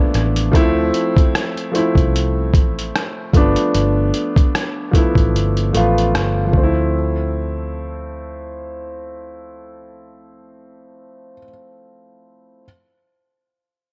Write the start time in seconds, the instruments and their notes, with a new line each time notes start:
Already playing: upright piano F3 A3 A#3 B3 D4 E4
0.14 fingered electric bass A1, cross-stick, closed hi-hat
0.36 closed hi-hat
0.51 fingered electric bass D2, upright piano F3 A3 C4, kick, closed hi-hat
0.56 upright piano E4
0.94 closed hi-hat
1.17 kick, closed hi-hat
1.35 cross-stick, closed hi-hat
1.57 closed hi-hat
1.71 upright piano F3 A3 C4, closed hi-hat
1.76 upright piano E4
1.95 fingered electric bass C2, kick, closed hi-hat
2.16 closed hi-hat
2.54 fingered electric bass A1, kick, closed hi-hat
2.79 closed hi-hat
2.96 cross-stick, closed hi-hat
3.33 fingered electric bass G1, upright piano F3 A3 B3, kick, closed hi-hat
3.37 upright piano D4
3.56 closed hi-hat
3.75 fingered electric bass G1, closed hi-hat
4.14 closed hi-hat
4.36 kick, closed hi-hat
4.55 cross-stick, closed hi-hat
4.91 upright piano F3 A3 B3, kick, closed hi-hat
4.96 upright piano E4
5.15 fingered electric bass A1, kick, closed hi-hat
5.34 fingered electric bass G1, closed hi-hat
5.57 closed hi-hat
5.73 fingered electric bass A1, upright piano F3 A3 B3, closed hi-hat
5.77 upright piano F4
5.98 closed hi-hat
6.14 fingered electric bass G1, cross-stick, closed hi-hat
6.46 upright piano F3
6.52 fingered electric bass D2, upright piano A3, kick
6.58 upright piano C4
6.63 upright piano E4